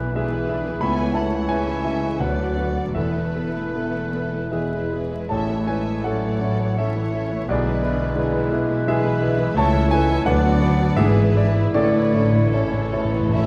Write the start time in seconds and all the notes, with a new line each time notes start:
Already playing: B1 B2 E3 G#3 E4 G#4 B4 D5 E5
0.00 E3 B3
0.15 D3 E3 G#3 D4 E4 G#4 B4 E5
0.31 E3 B3 E4 B4
0.49 D3 D4 E4 G#4 E5
0.65 E3 B3 E4 B4
0.81 C#2 E3 A3 B3 C#4 E4 A4 C#5 E5 G#5 B5
0.99 E3 A3 E4 C#5
1.14 A3 C#4 E4 A4 C#5 E5 F#5 A5
1.32 E3 A3 E4 C#5
1.48 G#3 A3 C#4 E4 A4 B4 E5 G#5
1.68 E3 A3 E4 C#5
1.84 A3 C#4 E4 A4 E5
2.03 E3 A3 E4 C#5
2.19 D2 D3 F#3 B3 D4 B4 D5 F#5
2.39 F#3 B3 D4 D5
2.57 D3 B3 D4 F#4 B4
2.77 F#3 B3 D4 D5
2.94 E1 E2 E3 A3 B3 E4 A4 B4 E5
3.15 A3 E4 A4
3.35 B3 A4 B4
3.55 A3 E4 A4
3.73 B3 A4 B4
3.93 A3 E4 A4
4.12 B3 A4 B4
4.32 A3 E4 A4
4.51 E2 E3 G#3 B3 E4 G#4 B4 E5
4.70 G#3 E4 G#4
4.91 E3 B3 G#4 B4
5.10 G#3 E4 G#4
5.29 A1 A2 A3 C#4 E4 A4 C#5 E5 A5
5.48 E3 A3 E4 C#5
5.67 G#3 A3 C#4 E4 A4 B4 C#5 E5 G#5
5.85 E3 A3 E4 C#5
6.03 F#3 A3 C#4 E4 A4 C#5 D5 F#5
6.23 E3 A3 E4 C#5
6.41 A3 C#4 E4 A4 C#5
6.59 E3 A3 E4 C#5
6.78 E3 A3 C#4 E4 A4 C#5 E5
6.95 E3 A3 E4 C#5
7.13 A3 C#4 E4 A4 C#5
7.29 E3 A3 E4 C#5
7.48 B1 B2 D3 G#3 B3 D4 G#4 B4 D5
7.65 E3 G#3 E4 B4
7.82 D3 B3 D4 E4 G#4 B4
7.99 E3 G#3 E4 B4
8.16 D3 G#3 B3 D4 E4 G#4 B4
8.33 E3 G#3 E4 B4
8.51 D3 B3 D4 E4 G#4 B4
8.68 E3 G#3 E4 B4
8.85 D3 E3 G#3 B3 D4 E4 G#4 B4 E5
8.89 G#4
9.02 E3 G#3 E4 B4
9.20 D3 B3 D4 E4 G#4 B4
9.38 E3 G#3 E4 B4
9.54 C#2 A3 C#4 E4 A4 C#5 E5 A5
9.59 C#5
9.72 E3 C#4
9.76 E4 C#5
9.89 G#3 A3 E4 A4 B4 E5 G#5
9.94 C#4 A4
10.07 E3 C#4 E4 C#5
10.25 D2 F#3 B3 D4 B4 D5 F#5
10.42 D3 B3 F#4 D5
10.60 F#3 D4 B4 D5
10.78 D3 B3 F#4 D5
10.97 G#1 G#2 D3 E3 D4 E4 G#4 B4 E5
11.16 E3 B3 E4 G#4
11.35 D3 D4 E4 G#4 B4 D5
11.55 E3 B3 E4 G#4
11.72 A1 A2 D3 A3 C#4 A4 B4 C#5 D5
11.76 A4
11.83 A2
11.91 A2 E3 A3 E4 C#5
11.99 A2
12.13 A2 A3 C#4 E4 A4 C#5
12.24 A2
12.32 A2 E3 A3 E4 C#5
12.40 A2
12.52 A2 C#3 A3 C#4 E4 A4 C#5
12.64 A2
12.73 A2 E3 A3 E4 C#5
12.81 A2
12.89 A2 C#4 A4
12.93 A2 A3 B3 C#4 E4 C#5
13.04 A2
13.12 A2 E3 A3 E4 C#5
13.20 A2
13.28 A2 C#4 E4 A4
13.33 A2 A3 E4 C#5 E5